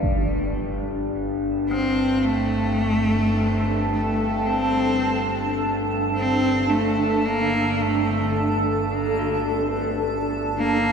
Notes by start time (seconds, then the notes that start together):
Already playing: G1 G2
0.03 impact
0.92 A5
1.59 D4
1.69 C4 A4
2.25 A3
3.92 A3
4.47 C4
6.17 C4
6.69 A3
7.26 A#3
7.82 A3
9.19 F#4
10.58 A#3